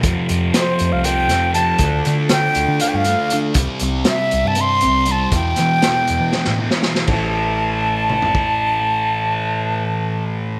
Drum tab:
CC |--------------|--------------|--------------|--------------|
HH |x-x-x-x-x-x-x-|x-x-x-x-x-x-x-|x-x-x-x-x-x-x-|x-x-x-x-------|
SD |----o-----o---|----o---------|----o---------|--o-o---oo-ooo|
T2 |--------------|--------------|--------------|--------------|
FT |--------------|--------------|--------------|--------------|
BD |o-------------|o-------------|o-------------|o-------------|

CC |x-------------|--------------|
HH |--------------|--------------|
SD |--------------|--------------|
T2 |--------o-----|--------------|
FT |---------o----|--------------|
BD |o---------o---|--------------|